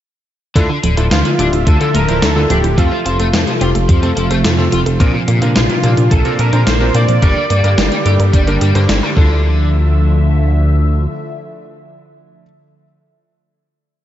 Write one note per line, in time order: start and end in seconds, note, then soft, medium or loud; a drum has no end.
0.56 0.68 D2 medium
0.56 0.66 D3 medium
0.56 0.69 D3 medium
0.56 0.68 D3 medium
0.56 2.76 D3 medium
0.56 7.18 F3 medium
0.56 4.96 A3 medium
0.56 0.69 D4 medium
0.56 0.69 E4 medium
0.56 0.69 F4 medium
0.56 0.69 A4 loud
0.56 2.76 E5 medium
0.56 kick loud
0.56 closed hi-hat medium
0.70 0.77 D3 loud
0.83 0.96 D1 medium
0.83 0.94 D3 medium
0.83 0.90 F3 medium
0.83 closed hi-hat medium
0.97 1.09 D1 medium
0.97 1.18 D3 medium
0.97 1.04 F3 medium
0.97 1.18 D4 medium
0.97 1.18 E4 medium
0.97 1.11 E4 medium
0.97 1.18 F4 medium
0.97 1.18 A4 medium
0.97 closed hi-hat medium
1.11 1.23 D2 loud
1.11 1.23 E3 medium
1.11 1.18 F3 medium
1.11 1.69 F4 medium
1.11 snare loud
1.11 closed hi-hat medium
1.25 1.29 D3 medium
1.25 1.37 D3 medium
1.25 closed hi-hat soft
1.39 1.51 D1 medium
1.39 1.77 D3 medium
1.39 1.46 D4 medium
1.39 1.77 D4 medium
1.39 1.51 D4 medium
1.39 1.77 E4 medium
1.39 1.77 F4 medium
1.39 1.77 G4 medium
1.39 closed hi-hat medium
1.53 1.65 D1 medium
1.53 1.65 E4 medium
1.53 closed hi-hat soft
1.67 1.79 D2 loud
1.67 1.77 D3 medium
1.67 1.74 A3 medium
1.67 1.95 A4 loud
1.67 kick loud
1.67 closed hi-hat medium
1.80 1.88 D3 loud
1.80 2.01 D3 medium
1.80 1.92 D3 medium
1.80 2.01 D4 medium
1.80 2.01 E4 medium
1.80 2.01 F4 medium
1.80 2.01 A4 medium
1.80 closed hi-hat soft
1.94 2.07 D1 loud
1.94 2.05 D3 medium
1.94 2.02 A3 loud
1.94 2.20 A#4 loud
1.94 closed hi-hat medium
2.08 2.20 D1 medium
2.08 2.21 D3 medium
2.08 2.15 F3 medium
2.08 2.20 F3 medium
2.08 2.21 D4 medium
2.08 2.21 E4 medium
2.08 2.21 F4 medium
2.08 2.21 C5 medium
2.08 closed hi-hat medium
2.22 2.46 D2 medium
2.22 2.35 D3 medium
2.22 2.29 F3 medium
2.22 2.51 A4 loud
2.22 snare loud
2.22 closed hi-hat medium
2.36 2.40 D3 medium
2.36 2.75 D3 medium
2.36 2.43 D3 medium
2.36 2.75 D4 medium
2.36 2.75 E4 medium
2.36 2.75 F4 medium
2.36 2.75 A4 medium
2.50 2.62 D1 medium
2.50 2.57 F3 medium
2.50 2.57 D4 medium
2.50 2.76 G4 loud
2.50 closed hi-hat medium
2.64 2.76 D1 medium
2.64 2.77 E4 medium
2.64 closed hi-hat medium
2.78 2.90 F2 medium
2.78 7.18 C3 medium
2.78 2.88 F3 medium
2.78 2.89 F3 medium
2.78 2.91 A3 loud
2.78 2.91 C4 medium
2.78 3.30 F4 medium
2.78 2.91 F4 medium
2.78 4.98 F4 medium
2.78 2.91 A4 loud
2.78 kick loud
2.78 closed hi-hat medium
2.92 3.03 C3 medium
2.92 2.99 F3 medium
3.06 3.18 F1 medium
3.06 3.16 F3 medium
3.06 3.17 F4 medium
3.06 closed hi-hat medium
3.19 3.32 F1 medium
3.19 3.26 A3 medium
3.19 3.40 A3 medium
3.19 3.40 C4 medium
3.19 3.40 F4 medium
3.19 3.40 A4 medium
3.19 3.31 A4 medium
3.19 closed hi-hat medium
3.33 3.46 F2 loud
3.33 3.40 A3 medium
3.33 3.40 C4 medium
3.33 snare loud
3.33 closed hi-hat medium
3.47 3.59 C3 medium
3.47 3.52 F3 medium
3.47 closed hi-hat soft
3.61 3.73 F1 medium
3.61 4.00 A3 medium
3.61 4.00 C4 medium
3.61 3.68 C4 medium
3.61 3.68 F4 medium
3.61 4.00 F4 medium
3.61 4.00 G4 medium
3.61 closed hi-hat medium
3.75 3.87 F1 medium
3.75 3.87 A3 medium
3.75 closed hi-hat soft
3.89 4.13 F2 loud
3.89 4.02 C3 medium
3.89 3.99 F3 medium
3.89 kick loud
3.89 closed hi-hat medium
4.03 4.10 C3 loud
4.03 4.10 F3 loud
4.03 4.24 A3 medium
4.03 4.24 C4 medium
4.03 4.24 F4 medium
4.03 4.24 A4 medium
4.03 closed hi-hat soft
4.17 4.29 F1 medium
4.17 4.27 F3 medium
4.17 4.24 A3 medium
4.17 closed hi-hat medium
4.31 4.43 F1 medium
4.31 4.38 A3 loud
4.31 4.44 A3 medium
4.31 4.44 C4 medium
4.31 4.44 F4 medium
4.31 4.44 A4 medium
4.31 4.44 C5 medium
4.31 closed hi-hat medium
4.44 4.69 F2 medium
4.44 4.56 F3 medium
4.44 4.51 A3 medium
4.44 snare loud
4.44 closed hi-hat medium
4.58 4.70 C3 medium
4.58 4.63 F3 medium
4.58 4.97 A3 medium
4.58 4.97 C4 medium
4.58 4.97 F4 medium
4.58 4.97 A4 medium
4.72 4.84 F1 medium
4.72 4.84 F4 medium
4.72 4.79 F4 medium
4.72 closed hi-hat medium
4.86 4.98 F1 medium
4.86 4.98 A4 medium
4.86 closed hi-hat medium
5.00 5.12 A#1 loud
5.00 5.13 A#2 loud
5.00 5.11 A#2 medium
5.00 5.07 A#3 medium
5.00 9.13 A#3 medium
5.00 5.13 C4 medium
5.00 5.13 D4 medium
5.00 7.20 D4 medium
5.00 5.13 F4 medium
5.00 5.13 A#4 loud
5.00 kick loud
5.00 closed hi-hat medium
5.14 5.21 A#2 loud
5.14 5.26 C3 medium
5.28 5.40 A#2 medium
5.28 5.38 A#2 medium
5.28 5.35 A#3 loud
5.28 closed hi-hat medium
5.42 5.54 A#2 medium
5.42 5.62 A#2 medium
5.42 5.49 D3 medium
5.42 5.53 F3 medium
5.42 5.62 C4 medium
5.42 5.62 D4 medium
5.42 5.62 F4 medium
5.42 5.62 A#4 medium
5.42 closed hi-hat medium
5.56 5.68 A#1 loud
5.56 5.68 C3 medium
5.56 5.63 D3 medium
5.56 6.13 F4 medium
5.56 snare loud
5.56 closed hi-hat medium
5.70 5.74 A#2 medium
5.70 5.77 C3 loud
5.70 closed hi-hat soft
5.83 6.22 A#2 medium
5.83 5.96 A#2 medium
5.83 5.90 F3 medium
5.83 5.90 A#3 medium
5.83 6.22 C4 medium
5.83 6.22 D4 medium
5.83 6.22 F4 medium
5.83 6.22 G4 medium
5.83 closed hi-hat medium
5.97 6.09 A#2 medium
5.97 6.11 D4 medium
5.97 closed hi-hat medium
6.11 6.23 A#1 loud
6.11 6.22 A#2 medium
6.11 6.23 D3 medium
6.11 6.40 A4 medium
6.11 kick loud
6.11 closed hi-hat medium
6.25 6.32 A#2 loud
6.25 6.46 A#2 medium
6.25 6.37 C3 medium
6.25 6.46 C4 medium
6.25 6.46 D4 medium
6.25 6.46 F4 medium
6.25 6.46 A#4 medium
6.25 closed hi-hat soft
6.39 6.51 A#2 loud
6.39 6.49 A#2 medium
6.39 6.51 C4 medium
6.39 6.65 A#4 medium
6.39 closed hi-hat medium
6.53 6.65 A#2 medium
6.53 6.66 A#2 medium
6.53 6.60 D3 loud
6.53 6.66 C4 medium
6.53 6.66 D4 medium
6.53 6.65 D4 medium
6.53 6.66 F4 medium
6.53 6.66 C5 medium
6.53 closed hi-hat medium
6.67 6.91 A#1 medium
6.67 6.74 D3 medium
6.67 6.74 A#3 medium
6.67 6.95 C5 loud
6.67 snare loud
6.67 closed hi-hat medium
6.81 7.19 A#2 medium
6.81 6.85 A#2 medium
6.81 6.92 C3 medium
6.81 7.19 C4 medium
6.81 7.19 D4 medium
6.81 7.19 F4 medium
6.81 7.19 A#4 loud
6.94 7.07 A#2 medium
6.94 7.02 A#3 medium
6.94 7.02 A#3 loud
6.94 8.57 D5 loud
6.94 closed hi-hat medium
7.08 7.21 A#2 medium
7.08 7.20 F3 medium
7.08 closed hi-hat medium
7.22 7.34 G1 medium
7.22 7.35 G2 medium
7.22 9.15 D3 medium
7.22 7.35 D3 medium
7.22 7.33 G3 medium
7.22 9.15 G3 medium
7.22 7.35 A#3 medium
7.22 7.35 D4 medium
7.22 7.35 G4 medium
7.22 9.15 G4 medium
7.22 7.35 A#4 loud
7.22 kick loud
7.22 closed hi-hat medium
7.36 7.43 D3 medium
7.36 7.43 G3 loud
7.50 7.62 G2 medium
7.50 7.61 G3 medium
7.50 7.57 A#3 medium
7.50 closed hi-hat medium
7.64 7.76 G2 medium
7.64 7.85 G2 medium
7.64 7.71 A#3 medium
7.64 7.85 A#3 medium
7.64 7.85 D4 medium
7.64 7.85 G4 medium
7.64 7.85 A#4 medium
7.64 7.77 A#4 medium
7.64 closed hi-hat medium
7.78 7.90 G1 loud
7.78 7.90 G3 medium
7.78 7.85 A#3 medium
7.78 snare loud
7.78 closed hi-hat medium
7.92 8.04 D3 medium
7.92 7.96 G3 medium
7.92 closed hi-hat soft
8.05 8.18 G2 medium
8.05 8.44 G2 medium
8.05 8.44 A#3 medium
8.05 8.44 D4 medium
8.05 8.13 G4 medium
8.05 8.44 G4 medium
8.05 8.17 G4 medium
8.05 8.44 A4 medium
8.05 closed hi-hat medium
8.19 8.32 G2 medium
8.19 8.31 A#4 medium
8.19 closed hi-hat soft
8.33 8.58 G1 loud
8.33 8.44 G3 medium
8.33 8.41 D4 medium
8.33 kick loud
8.33 closed hi-hat medium
8.47 8.68 G2 medium
8.47 8.59 D3 medium
8.47 8.54 G3 loud
8.47 8.68 A#3 medium
8.47 8.68 D4 medium
8.47 8.68 G4 medium
8.47 8.68 A#4 medium
8.47 closed hi-hat soft
8.61 8.73 G2 medium
8.61 8.72 G3 medium
8.61 8.75 G4 medium
8.61 closed hi-hat medium
8.75 9.13 G2 medium
8.75 8.87 G2 medium
8.75 8.87 D3 medium
8.75 9.13 A#3 medium
8.75 8.82 A#3 loud
8.75 9.13 D4 medium
8.75 9.13 G4 medium
8.75 9.13 C5 loud
8.75 closed hi-hat soft
8.89 9.01 G1 medium
8.89 8.96 A#3 medium
8.89 9.02 D5 medium
8.89 snare loud
8.89 closed hi-hat medium
9.03 9.07 G3 medium
9.03 9.16 A#4 medium
9.17 11.07 D2 loud
9.17 9.68 D3 medium
9.17 12.43 D3 medium
9.17 9.69 D3 medium
9.17 12.43 F3 medium
9.17 12.43 A3 medium
9.17 12.43 D4 medium
9.17 12.43 E4 medium
9.17 12.43 F4 medium
9.17 12.43 A4 medium
9.17 12.43 E5 medium
9.17 kick loud